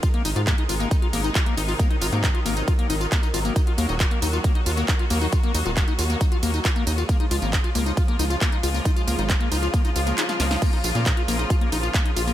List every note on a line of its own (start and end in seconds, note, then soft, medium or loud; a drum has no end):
0.03 3.52 C3 medium
0.03 7.05 D#3 medium
0.03 1.78 G#3 medium
0.03 3.53 D#4 medium
0.03 0.09 F4 medium
0.03 kick loud
0.03 closed hi-hat loud
0.03 ride medium
0.03 tambourine soft
0.14 0.23 A#3 medium
0.14 closed hi-hat medium
0.25 0.34 G#1 loud
0.25 0.31 D#4 medium
0.25 open hi-hat loud
0.25 ride medium
0.25 tambourine medium
0.36 0.53 G#2 loud
0.36 0.42 F4 medium
0.36 closed hi-hat soft
0.36 tambourine soft
0.47 0.56 A#3 medium
0.47 kick loud
0.47 clap loud
0.47 closed hi-hat medium
0.47 ride medium
0.47 tambourine soft
0.58 0.64 D#4 medium
0.58 closed hi-hat medium
0.69 0.86 G#1 medium
0.69 0.75 F4 medium
0.69 open hi-hat loud
0.69 ride medium
0.69 tambourine medium
0.80 0.89 A#3 medium
0.80 closed hi-hat soft
0.80 tambourine soft
0.91 0.97 D#4 medium
0.91 kick loud
0.91 closed hi-hat medium
0.91 ride medium
0.91 tambourine soft
1.02 1.08 F4 medium
1.02 closed hi-hat medium
1.13 1.31 G#1 medium
1.13 1.22 A#3 medium
1.13 open hi-hat loud
1.13 ride medium
1.13 tambourine medium
1.24 1.30 D#4 medium
1.24 closed hi-hat medium
1.24 tambourine soft
1.35 1.41 F4 medium
1.35 kick loud
1.35 clap loud
1.35 closed hi-hat medium
1.35 ride medium
1.35 tambourine soft
1.46 1.55 A#3 medium
1.46 closed hi-hat medium
1.57 1.75 G#1 loud
1.57 1.63 D#4 medium
1.57 open hi-hat loud
1.57 ride medium
1.57 tambourine medium
1.68 1.74 F4 medium
1.68 open hi-hat medium
1.68 tambourine soft
1.79 7.05 F#3 medium
1.79 1.88 A#3 medium
1.79 kick loud
1.79 closed hi-hat medium
1.79 ride medium
1.79 tambourine soft
1.90 1.96 D#4 medium
1.90 closed hi-hat soft
2.01 2.10 G#1 loud
2.01 2.07 F4 medium
2.01 open hi-hat loud
2.01 ride medium
2.01 tambourine medium
2.12 2.30 G#2 medium
2.12 2.21 A#3 medium
2.12 closed hi-hat medium
2.12 tambourine soft
2.23 2.29 D#4 medium
2.23 kick loud
2.23 clap loud
2.23 closed hi-hat medium
2.23 ride medium
2.23 tambourine soft
2.34 2.40 F4 medium
2.34 closed hi-hat medium
2.45 2.63 G#1 medium
2.45 2.54 A#3 medium
2.45 open hi-hat loud
2.45 ride medium
2.45 tambourine medium
2.57 2.62 D#4 medium
2.57 closed hi-hat soft
2.57 tambourine soft
2.68 2.73 F4 medium
2.68 kick loud
2.68 closed hi-hat medium
2.68 ride medium
2.68 tambourine soft
2.79 2.87 A#3 medium
2.79 closed hi-hat medium
2.90 3.07 G#1 loud
2.90 2.95 D#4 medium
2.90 open hi-hat loud
2.90 ride medium
2.90 tambourine medium
3.01 3.06 F4 medium
3.01 closed hi-hat soft
3.01 tambourine soft
3.12 3.20 A#3 medium
3.12 kick loud
3.12 clap loud
3.12 closed hi-hat medium
3.12 ride medium
3.12 tambourine soft
3.23 3.28 D#4 medium
3.23 closed hi-hat soft
3.23 tambourine soft
3.34 3.51 G#1 medium
3.34 3.40 F4 medium
3.34 open hi-hat loud
3.34 ride medium
3.34 tambourine medium
3.45 3.53 A#3 medium
3.45 closed hi-hat medium
3.45 tambourine soft
3.56 7.05 A#3 medium
3.56 3.62 D#4 medium
3.56 7.05 F#4 medium
3.56 kick loud
3.56 closed hi-hat medium
3.56 ride medium
3.56 tambourine soft
3.67 3.73 F4 medium
3.67 closed hi-hat medium
3.78 3.87 D#2 loud
3.78 3.86 A#3 medium
3.78 open hi-hat loud
3.78 ride medium
3.78 tambourine medium
3.89 4.06 D#1 loud
3.89 3.95 D#4 medium
3.89 closed hi-hat soft
3.89 tambourine soft
4.00 4.06 F4 medium
4.00 kick loud
4.00 clap loud
4.00 closed hi-hat medium
4.00 ride medium
4.00 tambourine soft
4.11 4.20 A#3 medium
4.11 closed hi-hat medium
4.22 4.39 D#2 medium
4.22 4.28 D#4 medium
4.22 open hi-hat loud
4.22 ride medium
4.22 tambourine medium
4.33 4.39 F4 medium
4.33 closed hi-hat soft
4.33 tambourine soft
4.44 4.53 A#3 medium
4.44 kick loud
4.44 closed hi-hat medium
4.44 ride medium
4.44 tambourine soft
4.55 4.61 D#4 medium
4.55 closed hi-hat medium
4.66 4.84 D#2 medium
4.66 4.72 F4 medium
4.66 open hi-hat loud
4.66 ride medium
4.66 tambourine medium
4.77 4.86 A#3 medium
4.77 closed hi-hat soft
4.77 tambourine soft
4.88 4.94 D#4 medium
4.88 kick loud
4.88 clap loud
4.88 closed hi-hat medium
4.88 ride medium
4.88 tambourine soft
4.99 5.05 F4 medium
4.99 closed hi-hat soft
5.10 5.28 D#2 loud
5.10 5.19 A#3 medium
5.10 open hi-hat loud
5.10 ride medium
5.10 tambourine medium
5.21 5.27 D#4 medium
5.21 open hi-hat medium
5.21 tambourine soft
5.32 5.38 F4 medium
5.32 kick loud
5.32 closed hi-hat medium
5.32 ride medium
5.32 tambourine soft
5.43 5.52 A#3 medium
5.43 closed hi-hat medium
5.55 5.63 D#2 loud
5.55 5.60 D#4 medium
5.55 open hi-hat loud
5.55 ride medium
5.55 tambourine medium
5.65 5.83 D#1 loud
5.65 5.71 F4 medium
5.65 closed hi-hat medium
5.65 tambourine soft
5.77 5.85 A#3 medium
5.77 kick loud
5.77 clap loud
5.77 closed hi-hat medium
5.77 ride medium
5.77 tambourine soft
5.88 5.93 D#4 medium
5.88 closed hi-hat medium
5.99 6.16 D#2 medium
5.99 6.04 F4 medium
5.99 open hi-hat loud
5.99 ride medium
5.99 tambourine medium
6.10 6.18 A#3 medium
6.10 closed hi-hat medium
6.10 tambourine soft
6.21 6.26 D#4 medium
6.21 kick loud
6.21 closed hi-hat medium
6.21 ride medium
6.21 tambourine soft
6.32 6.37 F4 medium
6.32 closed hi-hat medium
6.43 6.60 D#2 medium
6.43 6.51 A#3 medium
6.43 open hi-hat loud
6.43 ride medium
6.43 tambourine medium
6.54 6.59 D#4 medium
6.54 closed hi-hat medium
6.54 tambourine soft
6.65 6.70 F4 medium
6.65 kick loud
6.65 clap loud
6.65 closed hi-hat medium
6.65 ride medium
6.65 tambourine soft
6.76 6.84 A#3 medium
6.76 closed hi-hat medium
6.87 7.04 D#2 loud
6.87 6.93 D#4 medium
6.87 open hi-hat loud
6.87 ride medium
6.87 tambourine medium
6.98 7.04 F4 medium
6.98 closed hi-hat medium
6.98 tambourine soft
7.09 12.33 C#3 medium
7.09 12.33 F3 medium
7.09 10.58 G#3 medium
7.09 7.17 A#3 medium
7.09 12.33 F4 medium
7.09 kick loud
7.09 closed hi-hat loud
7.09 ride medium
7.09 tambourine soft
7.20 7.26 D#4 medium
7.20 closed hi-hat medium
7.31 7.40 C#2 loud
7.31 7.37 F4 medium
7.31 open hi-hat loud
7.31 ride medium
7.31 tambourine medium
7.42 7.59 G#1 loud
7.42 7.51 A#3 medium
7.42 closed hi-hat medium
7.42 tambourine soft
7.53 7.59 D#4 medium
7.53 kick loud
7.53 clap loud
7.53 closed hi-hat medium
7.53 ride medium
7.53 tambourine soft
7.64 7.70 F4 medium
7.64 closed hi-hat medium
7.75 7.92 C#2 medium
7.75 7.84 A#3 medium
7.75 open hi-hat loud
7.75 ride medium
7.75 tambourine medium
7.86 7.92 D#4 medium
7.86 closed hi-hat medium
7.86 tambourine soft
7.97 8.03 F4 medium
7.97 kick loud
7.97 closed hi-hat loud
7.97 ride medium
7.97 tambourine soft
8.08 8.17 A#3 medium
8.08 closed hi-hat medium
8.19 8.37 C#2 medium
8.19 8.25 D#4 medium
8.19 open hi-hat loud
8.19 ride medium
8.19 tambourine medium
8.30 8.36 F4 medium
8.30 closed hi-hat medium
8.30 tambourine soft
8.41 8.50 A#3 medium
8.41 kick loud
8.41 clap loud
8.41 closed hi-hat loud
8.41 ride medium
8.41 tambourine soft
8.52 8.58 D#4 medium
8.52 closed hi-hat medium
8.63 8.81 C#2 loud
8.63 8.69 F4 medium
8.63 open hi-hat loud
8.63 ride medium
8.63 tambourine medium
8.74 8.83 A#3 medium
8.74 open hi-hat medium
8.74 tambourine soft
8.85 8.91 D#4 medium
8.85 kick loud
8.85 closed hi-hat loud
8.85 ride medium
8.85 tambourine soft
8.96 9.02 F4 medium
8.96 closed hi-hat medium
8.96 tambourine soft
9.07 9.16 C#2 loud
9.07 9.16 A#3 medium
9.07 open hi-hat loud
9.07 ride medium
9.07 tambourine medium
9.18 9.36 G#1 loud
9.18 9.24 D#4 medium
9.18 closed hi-hat medium
9.18 tambourine soft
9.29 9.35 F4 medium
9.29 kick loud
9.29 clap loud
9.29 closed hi-hat loud
9.29 ride medium
9.29 tambourine soft
9.41 9.49 A#3 medium
9.41 closed hi-hat medium
9.52 9.69 C#2 medium
9.52 9.57 D#4 medium
9.52 open hi-hat loud
9.52 ride medium
9.52 tambourine medium
9.63 9.68 F4 medium
9.63 closed hi-hat medium
9.63 tambourine soft
9.74 9.82 A#3 medium
9.74 kick loud
9.74 closed hi-hat loud
9.74 ride medium
9.74 tambourine soft
9.85 9.90 D#4 medium
9.85 closed hi-hat medium
9.85 tambourine soft
9.96 10.13 C#2 loud
9.96 10.01 F4 medium
9.96 open hi-hat loud
9.96 ride medium
9.96 tambourine medium
10.07 10.15 A#3 medium
10.07 closed hi-hat medium
10.07 tambourine soft
10.18 10.24 D#4 medium
10.18 clap loud
10.18 closed hi-hat loud
10.18 ride medium
10.18 tambourine soft
10.29 10.35 F4 medium
10.29 snare medium
10.29 closed hi-hat medium
10.29 tambourine soft
10.40 10.57 C#2 loud
10.40 10.48 A#3 medium
10.40 snare medium
10.40 open hi-hat loud
10.40 ride medium
10.40 tambourine medium
10.51 10.57 D#4 medium
10.51 snare medium
10.51 open hi-hat medium
10.51 tambourine soft
10.62 12.33 A#3 medium
10.62 10.70 A#3 medium
10.62 kick loud
10.62 closed hi-hat loud
10.62 crash medium
10.62 ride medium
10.62 tambourine soft
10.73 10.79 D#4 medium
10.73 closed hi-hat medium
10.84 10.93 A#1 loud
10.84 10.90 F4 medium
10.84 open hi-hat loud
10.84 ride medium
10.84 tambourine medium
10.95 11.12 A#2 loud
10.95 11.04 A#3 medium
10.95 closed hi-hat medium
10.95 tambourine soft
11.06 11.12 D#4 medium
11.06 kick loud
11.06 clap loud
11.06 closed hi-hat loud
11.06 ride medium
11.06 tambourine soft
11.17 11.23 F4 medium
11.17 closed hi-hat medium
11.28 11.45 A#1 medium
11.28 11.37 A#3 medium
11.28 open hi-hat loud
11.28 ride medium
11.28 tambourine medium
11.39 11.45 D#4 medium
11.39 closed hi-hat medium
11.39 tambourine soft
11.50 11.56 F4 medium
11.50 kick loud
11.50 closed hi-hat loud
11.50 ride medium
11.50 tambourine soft
11.61 11.70 A#3 medium
11.61 closed hi-hat medium
11.72 11.90 A#1 medium
11.72 11.78 D#4 medium
11.72 open hi-hat loud
11.72 ride medium
11.72 tambourine medium
11.83 11.89 F4 medium
11.83 closed hi-hat medium
11.83 tambourine soft
11.94 12.03 A#3 medium
11.94 kick loud
11.94 clap loud
11.94 closed hi-hat medium
11.94 ride medium
11.94 tambourine soft
12.05 12.11 D#4 medium
12.05 closed hi-hat medium
12.16 12.33 A#1 loud
12.16 12.22 F4 medium
12.16 open hi-hat loud
12.16 ride medium
12.16 tambourine medium
12.27 12.33 A#3 medium
12.27 open hi-hat medium
12.27 tambourine soft